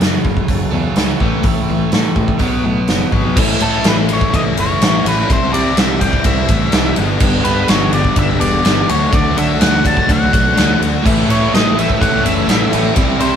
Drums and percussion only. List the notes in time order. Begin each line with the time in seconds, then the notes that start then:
0.01 snare, open hi-hat
0.25 kick
0.37 kick
0.48 kick, open hi-hat
0.96 snare, open hi-hat
1.20 kick
1.43 kick, open hi-hat
1.92 snare, open hi-hat
2.16 kick
2.28 kick
2.39 kick, open hi-hat
2.88 snare, open hi-hat
3.12 kick
3.37 kick, crash
3.60 ride
3.84 snare, ride
4.09 ride
4.21 kick
4.34 kick, ride
4.57 ride
4.82 snare, ride
5.06 ride
5.30 kick, ride
5.54 ride
5.77 snare, ride
6.01 kick, ride
6.13 kick
6.24 kick, ride
6.49 kick, ride
6.72 snare, ride
6.96 ride
7.20 kick, crash
7.45 ride
7.68 snare, ride
7.93 ride
8.05 kick
8.16 kick, ride
8.41 ride
8.65 snare, ride
8.89 ride
9.13 kick, ride
9.38 ride
9.61 snare, ride
9.85 kick, ride
9.97 kick
10.09 kick, ride
10.33 kick, ride
10.57 snare, ride
10.82 ride
11.06 kick, crash
11.30 ride
11.54 snare, ride
11.79 ride
11.90 kick
12.02 kick, ride
12.26 ride
12.49 snare, ride
12.73 ride
12.96 kick, ride
13.20 ride